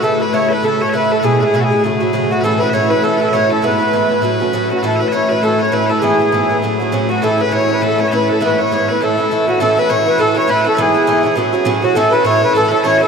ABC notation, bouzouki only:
X:1
M:4/4
L:1/8
Q:"Swing" 1/4=201
K:A
V:1 name="Bouzouki"
[C,A,EA] [A,EA] [C,A,EA] [A,EA] [C,A,EA] [A,EA] [C,A,EA] [A,EA] | [B,,G,EG] [G,EG] [B,,G,EG] [G,EG] [C,F,A,F] [F,A,F] [C,F,A,F] [F,A,F] | [A,,E,CE] [E,CE] [A,,E,CE] [E,CE] [A,,E,CE] [E,CE] [A,,E,CE] [E,CE] | [G,,E,B,E] [E,B,E] [G,,E,B,E] [E,B,E] [A,,F,CF] [F,CF] [A,,F,CF] [F,CF] |
[A,,E,CE] [E,CE] [A,,E,CE] [E,CE] [A,,E,CE] [E,CE] [A,,E,CE] [E,CE] | [G,,E,B,E] [E,B,E] [G,,E,B,E] [E,B,E] [A,,F,CF] [F,CF] [A,,F,CF] [F,CF] | [A,,E,CE] [E,CE] [A,,E,CE] [E,CE] [A,,E,CE] [E,CE] [A,,E,CE] [E,CE] | [G,,E,B,E] [E,B,E] [G,,E,B,E] [E,B,E] [A,,E,CE] [E,CE] [A,,E,CE] [E,CE] |
[A,,E,CE] [E,CE] [A,,E,CE] [E,CE] [A,,E,CE] [E,CE] [A,,E,CE] [E,CE] | [G,,E,B,E] [E,B,E] [G,,E,B,E] [E,B,E] [A,,F,CF] [F,CF] [A,,F,CF] [F,CF] | [A,,E,CE] [E,CE] [A,,E,CE] [E,CE] [A,,E,CE] [E,CE] [A,,E,CE] [E,CE] |]